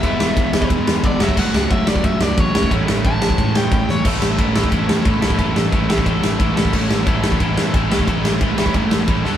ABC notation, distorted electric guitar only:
X:1
M:4/4
L:1/8
Q:1/4=179
K:A
V:1 name="Distorted electric guitar"
[E,G,B,E]6- [E,G,B,E] [F,A,CF]- | [F,A,CF]6- [F,A,CF] z | [A,,E,A,CE]8 | [A,,E,A,CEA]2 [A,,E,A,CEA] [A,,E,A,CEA] [A,,E,A,CEA]2 [A,,E,A,CEA] [A,,E,A,CEA] |
[A,,E,A,CEA]2 [A,,E,A,CEA] [A,,E,A,CEA] [A,,E,A,CEA]2 [A,,E,A,CEA] [A,,E,A,CEA] | [A,,E,A,CEA]2 [A,,E,A,CEA] [A,,E,A,CEA] [A,,E,A,CEA]2 [A,,E,A,CEA] [A,,E,A,CEA] | [A,,E,A,CEA]2 [A,,E,A,CEA] [A,,E,A,CEA] [A,,E,A,CEA]2 [A,,E,A,CEA] [D,A,DFA] |]